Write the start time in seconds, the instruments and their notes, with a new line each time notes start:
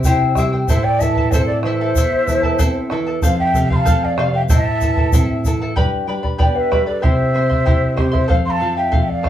Already playing: nylon-string guitar C3, quena C5 E5
0.03 nylon-string guitar E4, charango E4 G4 C5 E5 G5, bombo low, shaker
0.35 nylon-string guitar G3, charango E4 C5 E5 G5, bombo rim, bombo low, shaker
0.53 charango E4 C5 G5
0.68 nylon-string guitar A2, charango E4 A4 C5 E5 A5, quena C5 E5, bombo low, shaker
0.84 quena D5 G5
1.00 nylon-string guitar E3, charango E4 A4 E5 A5, quena E5 A5, bombo low, shaker
1.16 charango E4 A4 A5, bombo low
1.31 nylon-string guitar C4, charango E4 A4 C5 E5 A5, quena A4 C5, bombo low, shaker
1.46 quena A4 D5
1.63 nylon-string guitar E3, charango E4 A4 E5 A5, quena C5 E5 F5, bombo rim
1.81 charango E4 A4 A5
1.95 nylon-string guitar E2, charango E4 A4 C5 E5 A5, bombo low, shaker
2.27 nylon-string guitar E3, charango E4 A4 E5 A5, bombo low, shaker
2.42 charango E4 A4 A5, bombo low
2.59 nylon-string guitar C4, charango E4 A4 C5 E5 A5, bombo low, shaker
2.90 nylon-string guitar E3, charango E4 A4 E5 A5, bombo rim
3.07 charango E4 A4 A5
3.22 nylon-string guitar F2, charango A4 C5 F5, quena C5 F5, bombo low, shaker
3.39 quena E5 G5
3.54 nylon-string guitar C3, charango A4 C5 F5, bombo low, shaker
3.70 charango C5 F5, quena F5 C6, bombo low
3.76 quena A5
3.85 nylon-string guitar A3, charango A4 C5 F5, bombo low, shaker
4.04 quena D5 F5
4.17 nylon-string guitar C3, charango A4 C5 F5, bombo rim
4.33 charango C5 F5, quena E5 G5
4.49 nylon-string guitar A2, charango E4 A4 C5 E5 A5, quena D#5 A5, bombo low, shaker
4.63 quena E5
4.81 nylon-string guitar E3, charango E4 A4 E5 A5, bombo low, shaker
4.96 charango E4 A4 A5, bombo low
5.12 nylon-string guitar C4, charango E4 A4 C5 E5 A5, bombo low, shaker
5.44 nylon-string guitar E3, charango E4 A4 E5 A5, bombo low, shaker
5.62 charango E4 A4 A5
5.76 nylon-string guitar G2, charango G4 B4 D5 G5 B5, bombo low
6.07 nylon-string guitar G3, charango B4 D5 G5 B5
6.23 charango B4 D5 B5, bombo low
6.38 nylon-string guitar B3, charango G4 B4 D5 G5 B5, quena D5 G5, bombo low
6.55 quena B4 F5
6.60 quena E5
6.71 nylon-string guitar G3, charango B4 D5 G5 B5, bombo rim, bombo low
6.86 quena A4 D5, charango B4 D5 B5
7.02 nylon-string guitar C3, charango E4 G4 C5 E5 C6, quena C5 E5, bombo low
7.34 nylon-string guitar C4, charango E4 C5 E5 C6
7.50 charango E4 E5 C6, bombo low
7.65 charango E4 G4 C5 E5 C6, nylon-string guitar E4, bombo low
7.96 nylon-string guitar C4, charango E4 C5 E5 C6, quena G4 C5, bombo rim, bombo low
8.12 charango E4 E5 C6, quena C5 E5, bombo low
8.28 nylon-string guitar F2, charango A4 C5 F5, quena C5 F5, bombo low
8.45 quena F5 C6
8.50 quena A5
8.60 nylon-string guitar F3, charango A4 C5 F5
8.76 charango C5 F5, quena E5 G5
8.92 nylon-string guitar A3, charango A4 C5 F5, bombo low
9.02 quena E5 G5
9.08 quena D5 F5
9.23 nylon-string guitar F3, charango A4 C5 F5, bombo rim, bombo low